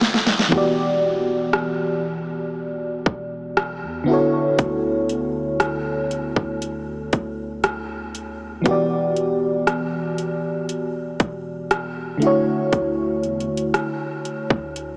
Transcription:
0.01 snare medium
0.14 snare medium
0.27 snare medium
0.39 snare medium
0.48 3.02 E1 loud
0.48 4.02 E3 medium
0.48 4.03 B3 medium
0.48 kick loud
0.53 4.04 F#4 medium
0.53 4.06 G4 medium
0.57 4.07 D5 medium
1.53 cross-stick loud
3.06 3.84 E1 loud
3.06 kick medium
3.57 cross-stick loud
3.82 4.07 E2 medium
4.04 8.09 D3 medium
4.04 8.10 B3 medium
4.04 8.11 E4 medium
4.09 8.12 F#4 medium
4.09 8.13 A4 medium
4.09 8.13 C#5 medium
4.58 6.33 D2 loud
4.58 kick loud
4.58 closed hi-hat medium
5.09 closed hi-hat medium
5.60 cross-stick loud
5.60 closed hi-hat medium
6.11 closed hi-hat medium
6.36 7.10 D2 medium
6.36 kick medium
6.62 closed hi-hat medium
7.13 8.62 D2 loud
7.13 kick medium
7.13 closed hi-hat medium
7.64 cross-stick loud
7.64 closed hi-hat medium
8.15 closed hi-hat medium
8.62 12.16 E3 medium
8.62 12.17 B3 medium
8.62 closed hi-hat medium
8.66 10.45 E1 loud
8.66 12.18 F#4 medium
8.66 12.19 G4 medium
8.66 kick loud
8.71 12.20 D5 medium
9.16 closed hi-hat medium
9.67 cross-stick loud
9.67 closed hi-hat medium
10.18 closed hi-hat medium
10.44 10.83 D1 medium
10.69 closed hi-hat medium
10.82 11.18 E1 medium
11.20 12.18 E1 loud
11.20 kick medium
11.20 closed hi-hat medium
11.71 cross-stick loud
11.71 closed hi-hat medium
12.17 14.97 D3 medium
12.17 14.97 A3 medium
12.22 14.97 E4 medium
12.22 14.97 F#4 medium
12.22 closed hi-hat medium
12.27 14.97 C#5 medium
12.73 13.25 D2 loud
12.73 kick loud
12.73 closed hi-hat medium
13.23 13.50 E2 medium
13.23 closed hi-hat soft
13.40 closed hi-hat medium
13.49 13.73 D2 medium
13.57 closed hi-hat medium
13.74 cross-stick loud
13.74 closed hi-hat medium
14.25 closed hi-hat medium
14.50 14.97 D2 loud
14.50 kick medium
14.76 closed hi-hat medium

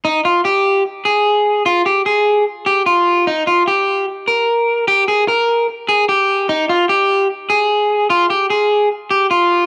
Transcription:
0.05 0.20 D#4 loud
0.25 0.40 F4 medium
0.45 0.83 G4 medium
1.05 1.62 G#4 medium
1.66 1.81 F4 loud
1.86 2.01 G4 medium
2.06 2.44 G#4 medium
2.66 2.82 G4 medium
2.86 3.24 F4 medium
3.27 3.42 D#4 loud
3.47 3.62 F4 medium
3.67 4.05 G4 medium
4.28 4.84 A#4 medium
4.88 5.03 G4 loud
5.08 5.23 G#4 medium
5.28 5.66 A#4 medium
5.89 6.04 G#4 medium
6.09 6.47 G4 medium
6.49 6.64 D#4 loud
6.69 6.85 F4 medium
6.89 7.27 G4 medium
7.50 8.06 G#4 medium
8.10 8.25 F4 loud
8.30 8.45 G4 medium
8.50 8.88 G#4 medium
9.11 9.26 G4 medium
9.31 9.66 F4 medium

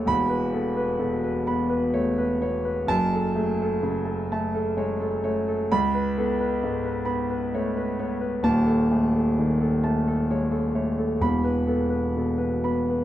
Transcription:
0.06 2.84 E1 medium
0.06 2.84 E2 medium
0.06 0.45 B5 loud
0.29 0.67 B4 medium
0.53 1.28 B3 medium
0.53 0.77 A4 medium
0.77 1.14 B4 medium
0.99 1.75 B2 medium
0.99 1.23 A4 medium
1.23 1.62 B4 medium
1.47 2.23 B3 medium
1.47 1.85 B5 medium
1.69 2.08 B4 medium
1.94 2.41 A3 medium
1.94 2.32 C#5 medium
2.18 2.55 B4 medium
2.41 2.88 B3 medium
2.41 2.79 C#5 medium
2.65 2.88 B4 medium
2.87 5.64 F#1 medium
2.87 5.65 F#2 medium
2.87 3.26 A5 loud
3.13 3.50 A4 medium
3.35 4.11 A3 medium
3.35 3.59 G#4 medium
3.62 3.98 A4 medium
3.82 4.58 C#3 medium
3.82 4.06 G#4 medium
4.05 4.43 A4 medium
4.32 5.05 A3 medium
4.32 4.68 A5 medium
4.55 4.91 A4 medium
4.77 5.23 G#3 medium
4.77 5.14 C#5 medium
5.00 5.37 A4 medium
5.24 5.70 A3 medium
5.24 5.60 C#5 medium
5.48 5.70 A4 medium
5.72 8.40 C#2 medium
5.72 6.07 B5 loud
5.95 6.29 B4 medium
6.18 6.89 B3 medium
6.18 6.39 A4 medium
6.40 6.75 B4 medium
6.63 7.35 G#2 medium
6.63 6.84 A4 medium
6.84 7.20 B4 medium
7.05 7.79 B3 medium
7.05 7.42 B5 medium
7.30 7.66 B4 medium
7.54 7.98 A3 medium
7.54 7.89 C#5 medium
7.77 8.12 B4 medium
7.99 8.44 B3 medium
7.99 8.35 C#5 medium
8.21 8.43 B4 medium
8.43 11.15 D#1 medium
8.43 11.15 D#2 medium
8.43 8.80 A5 medium
8.66 9.03 A4 medium
8.91 9.64 A3 medium
8.91 9.13 G#4 medium
9.14 9.50 A4 medium
9.38 10.10 D#3 medium
9.38 9.60 G#4 medium
9.61 9.96 A4 medium
9.84 10.56 A3 medium
9.84 10.19 A5 medium
10.08 10.42 A4 medium
10.30 10.75 G#3 soft
10.30 10.66 C#5 medium
10.52 10.87 A4 medium
10.75 11.20 A3 medium
10.75 11.11 C#5 medium
10.98 11.20 A4 medium
11.21 13.04 E1 medium
11.21 13.04 E2 medium
11.21 11.58 B5 medium
11.44 11.81 B4 medium
11.67 12.44 B3 medium
11.67 11.91 A4 soft
11.90 12.29 B4 medium
12.16 12.95 B2 soft
12.16 12.40 A4 soft
12.38 12.78 B4 medium
12.64 13.04 B3 medium
12.64 13.04 B5 medium
12.90 13.04 B4 soft

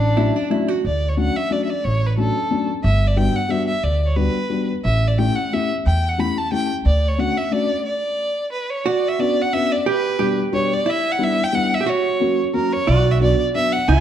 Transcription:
0.00 0.28 A1 medium
0.00 0.47 D4 medium
0.00 0.13 F#4 medium
0.17 0.35 F#3 medium
0.17 0.35 A3 soft
0.17 0.35 C#4 soft
0.17 0.35 D4 medium
0.17 0.36 E4 medium
0.36 0.51 D4 medium
0.50 0.68 F#3 medium
0.50 0.69 A3 medium
0.50 0.68 C#4 medium
0.50 0.69 D4 medium
0.50 0.68 E4 medium
0.68 0.84 F#4 medium
0.85 1.28 D2 medium
0.85 1.10 D5 medium
1.09 1.19 C#5 medium
1.17 1.35 F#3 medium
1.17 1.35 A3 soft
1.17 1.35 C#4 soft
1.17 1.35 D4 medium
1.17 1.38 F#5 medium
1.36 1.54 E5 medium
1.50 1.68 F#3 medium
1.50 1.68 A3 soft
1.50 1.68 C#4 soft
1.50 1.69 D4 medium
1.50 1.64 D5 medium
1.64 1.71 E5 medium
1.70 1.86 D5 medium
1.84 2.28 A1 medium
1.84 2.08 C#5 medium
2.06 2.17 B4 medium
2.17 2.35 F#3 medium
2.17 2.35 A3 soft
2.17 2.35 C#4 medium
2.17 2.35 D4 medium
2.17 2.65 A4 medium
2.50 2.68 F#3 soft
2.50 2.68 A3 medium
2.50 2.68 C#4 medium
2.50 2.68 D4 medium
2.84 3.27 G1 medium
2.84 3.09 E5 medium
3.07 3.18 D5 medium
3.17 3.34 G3 medium
3.17 3.35 B3 medium
3.17 3.34 D4 medium
3.17 3.34 F#4 medium
3.17 3.37 G5 medium
3.35 3.52 F#5 medium
3.49 3.67 G3 medium
3.49 3.67 B3 soft
3.49 3.68 D4 soft
3.49 3.67 F#4 medium
3.49 3.67 E5 medium
3.67 3.85 E5 medium
3.83 4.27 D2 medium
3.83 4.03 D5 medium
4.03 4.17 C#5 medium
4.03 4.07 D5 medium
4.16 4.34 G3 medium
4.16 4.34 B3 soft
4.16 4.34 D4 soft
4.16 4.35 F#4 medium
4.16 4.68 B4 medium
4.50 4.68 G3 soft
4.50 4.68 B3 soft
4.50 4.68 D4 soft
4.50 4.68 F#4 soft
4.85 5.28 A1 medium
4.85 5.09 E5 loud
5.08 5.20 D5 medium
5.18 5.36 A3 medium
5.18 5.36 C#4 soft
5.18 5.36 E4 soft
5.18 5.36 G4 soft
5.18 5.37 G5 medium
5.35 5.55 F#5 medium
5.53 5.70 A3 soft
5.53 5.70 C#4 medium
5.53 5.70 E4 soft
5.53 5.70 G4 medium
5.53 5.70 E5 medium
5.86 6.29 E2 medium
5.86 6.10 G5 loud
6.08 6.21 F#5 medium
6.18 6.36 A3 medium
6.18 6.36 C#4 soft
6.18 6.36 E4 medium
6.18 6.36 G4 medium
6.18 6.39 B5 medium
6.38 6.52 A5 medium
6.52 6.69 A3 medium
6.52 6.69 C#4 medium
6.52 6.69 E4 medium
6.52 6.69 G4 medium
6.52 6.69 G5 loud
6.85 7.29 D2 medium
6.85 7.10 D5 medium
7.08 7.21 C#5 medium
7.18 7.36 A3 medium
7.18 7.36 C#4 soft
7.18 7.36 D4 soft
7.18 7.36 F#4 medium
7.18 7.39 F#5 medium
7.37 7.54 E5 medium
7.51 7.69 A3 medium
7.51 7.69 C#4 medium
7.51 7.69 D4 soft
7.51 7.69 F#4 medium
7.51 7.85 D5 medium
7.86 8.48 D5 medium
8.52 8.71 B4 medium
8.70 8.88 C#5 medium
8.86 9.82 F#4 medium
8.86 9.10 D5 medium
9.08 9.21 E5 medium
9.19 9.37 B3 medium
9.19 9.37 C#4 soft
9.19 9.37 D4 medium
9.19 9.37 F#4 medium
9.19 9.43 D5 medium
9.41 9.54 F#5 medium
9.53 9.71 B3 medium
9.53 9.71 C#4 medium
9.53 9.71 D4 medium
9.53 9.71 F#4 medium
9.53 9.73 E5 loud
9.72 9.87 D5 medium
9.86 10.17 G4 medium
9.86 10.35 B4 medium
10.19 10.37 B2 medium
10.19 10.37 G3 medium
10.19 10.37 B3 medium
10.19 10.37 D4 medium
10.19 10.86 G4 medium
10.19 10.37 G4 medium
10.52 10.70 B2 medium
10.52 10.71 G3 medium
10.52 10.71 B3 medium
10.52 10.71 D4 medium
10.52 10.71 G4 medium
10.52 10.75 C#5 medium
10.73 10.91 D5 medium
10.86 11.80 E4 medium
10.86 11.13 E5 loud
11.11 11.25 F#5 medium
11.19 11.37 G3 medium
11.19 11.37 B3 medium
11.19 11.37 D4 soft
11.19 11.37 E4 medium
11.23 11.45 E5 loud
11.44 11.56 G5 loud
11.53 11.71 G3 medium
11.53 11.71 B3 soft
11.53 11.71 D4 medium
11.53 11.71 E4 medium
11.53 11.75 F#5 loud
11.74 11.91 E5 medium
11.81 11.86 G4 medium
11.86 12.67 F#4 medium
11.86 12.39 C#5 loud
12.20 12.38 F#3 medium
12.20 12.38 A#3 medium
12.20 12.38 C#4 medium
12.20 12.38 F#4 medium
12.54 12.72 F#3 medium
12.54 12.72 A#3 soft
12.54 12.72 C#4 soft
12.54 12.72 F#4 medium
12.54 12.74 A#4 medium
12.72 12.90 C#5 medium
12.87 13.31 B1 medium
12.87 13.55 F#4 medium
12.87 13.12 D5 loud
13.11 13.22 E5 medium
13.21 13.39 F#3 medium
13.21 13.39 B3 medium
13.21 13.39 D4 medium
13.21 13.39 F#4 medium
13.21 13.43 D5 medium
13.55 13.73 F#3 medium
13.55 13.73 B3 medium
13.55 13.73 D4 medium
13.55 13.84 E4 medium
13.55 13.73 F#4 medium
13.55 13.74 E5 loud
13.72 13.89 F#5 medium
13.88 14.00 C#2 medium
13.88 14.00 F4 medium
13.88 14.00 G#5 loud

